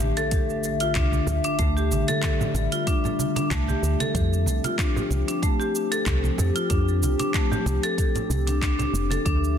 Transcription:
Already playing: D3 A3 E5, impact
0.00 A1, muted conga, high conga, shaker
0.17 A4, closed hi-hat, shaker
0.31 kick, closed hi-hat, shaker
0.50 shaker
0.64 shaker
0.80 F4, closed hi-hat, shaker
0.95 C2 D4, kick, clap, closed hi-hat, shaker
1.13 muted conga, high conga, shaker
1.27 D2, low conga, shaker
1.44 D4, closed hi-hat, shaker
1.59 D2 G3 A3, kick, closed hi-hat, shaker
1.77 G4, shaker
1.91 A1, high conga, shaker
2.08 A4, closed hi-hat, muted conga, shaker
2.23 kick, clap, closed hi-hat, shaker
2.41 low conga, shaker
2.54 A1, muted conga, shaker
2.72 F4, closed hi-hat, shaker
2.87 D4, kick, closed hi-hat, shaker
3.04 muted conga, low conga, shaker
3.19 high conga, shaker
3.36 D4, closed hi-hat, muted conga, shaker
3.51 C2 A3, kick, clap, closed hi-hat, shaker
3.68 G4, high conga, low conga, shaker
3.83 D2, shaker
4.00 A4, closed hi-hat, high conga, shaker
4.15 F2 F3 C4 G4, kick, closed hi-hat, shaker
4.33 shaker
4.46 C2, high conga, shaker
4.64 F4, closed hi-hat, muted conga, shaker
4.79 D4, kick, clap, closed hi-hat, shaker
4.96 low conga, shaker
5.10 C2, muted conga, high conga, shaker
5.28 D4, closed hi-hat, shaker
5.42 A3, kick, closed hi-hat, shaker
5.60 G4, shaker
5.75 shaker
5.92 A4, closed hi-hat, shaker
6.06 C2, kick, clap, closed hi-hat, shaker
6.24 muted conga, high conga, shaker
6.38 F2, low conga, shaker
6.56 F4, closed hi-hat, shaker
6.70 F2 D4, kick, closed hi-hat, shaker
6.88 shaker
7.03 C2, high conga, shaker
7.20 D4, closed hi-hat, muted conga, shaker
7.34 A3, kick, clap, closed hi-hat, shaker
7.52 G4, low conga, shaker
7.66 C2, muted conga, shaker
7.83 A4, closed hi-hat, shaker
7.98 kick, closed hi-hat, shaker
8.15 closed hi-hat, muted conga, low conga, shaker
8.30 C2, high conga, shaker
8.47 D4, closed hi-hat, muted conga, shaker
8.61 D4, kick, clap, closed hi-hat, shaker
8.79 D4, closed hi-hat, high conga, low conga, shaker
8.93 F1, shaker
9.10 A4, closed hi-hat, high conga, shaker
9.25 D2 D3 A3 D4 E5, kick, closed hi-hat, shaker
9.44 shaker

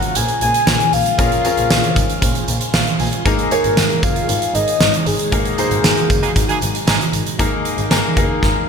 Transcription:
Already playing: C#3 F3 G#3 A#3 C#4 F4 G#4 A#4 F#5
0.02 closed hi-hat
0.15 A#1 G#5, closed hi-hat, tambourine
0.28 closed hi-hat
0.41 A#1 G#5, closed hi-hat
0.54 closed hi-hat
0.67 A#1, snare, tambourine
0.80 closed hi-hat
0.93 A#1 F5, open hi-hat, tambourine
1.06 closed hi-hat
1.18 A#1 C#4 F4 G#4 A#4 C5, kick, closed hi-hat, tambourine
1.32 closed hi-hat
1.44 C#4 F4 G#4 A#4, closed hi-hat, tambourine
1.57 A#1, closed hi-hat
1.70 A#1, snare, tambourine
1.84 closed hi-hat
1.96 G#1, kick, closed hi-hat, tambourine
2.09 closed hi-hat
2.22 A#1, kick, closed hi-hat, tambourine
2.35 closed hi-hat
2.48 A#1, closed hi-hat, tambourine
2.61 closed hi-hat
2.73 A#1 F5, snare, tambourine
2.87 closed hi-hat
2.99 A#1 G#5, open hi-hat, tambourine
3.13 closed hi-hat
3.25 G#1 A#2 D#3 A#3 D#4 G#4 A#4, kick, closed hi-hat, tambourine
3.39 closed hi-hat
3.51 A#3 D#4 G#4 A#4 C#5, closed hi-hat, tambourine
3.64 G#1, closed hi-hat
3.77 G#1, snare, tambourine
3.90 closed hi-hat
4.03 F#1 F5, kick, closed hi-hat, tambourine
4.16 closed hi-hat
4.28 G#1, closed hi-hat, tambourine
4.42 closed hi-hat
4.55 G#1 D#5, closed hi-hat, tambourine
4.68 closed hi-hat
4.80 G#1, snare, tambourine
4.94 closed hi-hat
5.06 G#1 G#4, open hi-hat, tambourine
5.19 closed hi-hat
5.32 G#1 A#3 D#4 F#4 G#4 A#4, kick, closed hi-hat
5.45 closed hi-hat
5.58 A#3 D#4 G#4 C5, closed hi-hat, tambourine
5.71 G#1, closed hi-hat
5.84 G#1, snare, tambourine
5.97 closed hi-hat
6.10 F#1, kick, closed hi-hat, tambourine
6.23 G#3 A#3 D#4 G#4, closed hi-hat
6.36 G#1, kick, closed hi-hat, tambourine
6.49 G#3 A#3 D#4 G#4, closed hi-hat
6.61 G#1, closed hi-hat, tambourine
6.75 closed hi-hat
6.87 G#1 G#3 A#3 D#4 G#4, snare, tambourine
7.01 closed hi-hat
7.13 G#1, closed hi-hat, tambourine
7.26 closed hi-hat
7.39 G#1 A#2 D#3 G#3 A#3 D#4 G#4 A#4, kick, closed hi-hat
7.65 closed hi-hat
7.78 G#1, closed hi-hat
7.90 G#1 A#3 D#4 G#4 A#4, snare, closed hi-hat
8.17 F#1 A#3 D#4 G#4 A#4, kick, closed hi-hat
8.43 G#1, kick, snare

